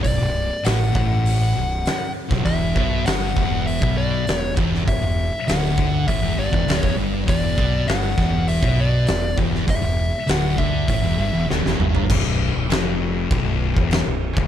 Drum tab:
CC |----------------|----------------|----------------|----------------|
HH |o---o---o---o---|o---o---o---o---|o---o---o---o---|o---o---o---o---|
SD |----o-------o--o|----o-------o--o|----o-------o---|----o-o-----o--o|
T2 |----------------|----------------|----------------|----------------|
FT |----------------|----------------|----------------|----------------|
BD |o-----o--------o|o-o---o--o----o-|o-----o-o--o-o--|o-o---o--o----o-|

CC |----------------|x---x---x---x---|
HH |o---o---o-------|----------------|
SD |----o-------oo--|----o-------o---|
T2 |--------------o-|----------------|
FT |---------------o|----------------|
BD |o-----o-o-------|o-------o--o---o|